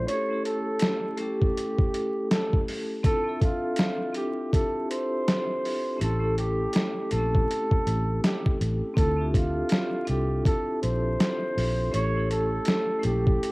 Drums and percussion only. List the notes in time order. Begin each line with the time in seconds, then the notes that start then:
0.08 closed hi-hat
0.45 closed hi-hat
0.79 snare, closed hi-hat
1.17 closed hi-hat
1.42 kick
1.57 closed hi-hat
1.78 kick
1.94 closed hi-hat
2.31 snare, closed hi-hat
2.53 kick
2.68 open hi-hat
3.04 kick, closed hi-hat
3.41 kick, closed hi-hat
3.76 snare, closed hi-hat
4.14 closed hi-hat
4.53 kick, closed hi-hat
4.91 closed hi-hat
5.28 snare, closed hi-hat
5.65 open hi-hat
6.01 closed hi-hat
6.38 closed hi-hat
6.73 snare, closed hi-hat
7.11 closed hi-hat
7.35 kick
7.51 closed hi-hat
7.71 kick
7.87 closed hi-hat
8.24 snare, closed hi-hat
8.46 kick
8.61 closed hi-hat
8.97 kick, closed hi-hat
9.34 kick, closed hi-hat
9.69 snare, closed hi-hat
10.07 closed hi-hat
10.45 kick, closed hi-hat
10.83 closed hi-hat
11.20 snare, closed hi-hat
11.58 open hi-hat
11.94 closed hi-hat
12.31 closed hi-hat
12.65 snare, closed hi-hat
13.03 closed hi-hat
13.27 kick
13.43 closed hi-hat